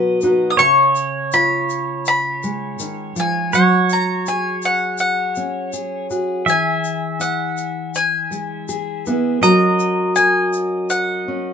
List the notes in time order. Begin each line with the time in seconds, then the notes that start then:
Already playing: B2 F#3 B3 F#4 B4 D#5 F#5
0.21 D#4 F#4 B4, shaker
0.50 D#6
0.57 C#3 C#5 C#6, shaker
0.95 shaker
1.32 F4 B5, shaker
1.70 shaker
2.06 B5, shaker
2.43 G#3, shaker
2.79 D#3, shaker
3.16 F3 G#5, shaker
3.53 F#3 C#5 F#5, shaker
3.89 A#5, shaker
4.27 G#4 G#5, shaker
4.62 F#5, shaker
4.98 F#5, shaker
5.35 C#4, shaker
5.73 G#4, shaker
6.10 F#4 G#4, shaker
6.46 E3 E5 G#5, shaker
6.84 shaker
7.20 E4 F#5, shaker
7.57 shaker
7.95 G#5, shaker
8.31 G#3, shaker
8.69 G#4, shaker
9.06 B3 E4 G#4, shaker
9.41 F#3 C#4 F#4 A#4 D#5 A#5, shaker
9.79 shaker
10.16 A#4 G#5, shaker
10.53 shaker
10.90 F#5, shaker
11.28 C#4